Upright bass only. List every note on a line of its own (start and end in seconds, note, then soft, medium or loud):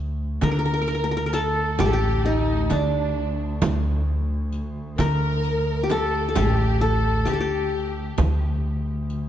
0.00 0.39 D2 medium
0.42 1.81 D3 loud
1.79 2.67 A1 medium
2.71 3.12 D3 medium
3.62 4.95 D2 medium
4.99 6.38 D3 loud
6.36 7.23 A1 loud
7.27 7.69 D3 medium
8.19 9.29 D2 medium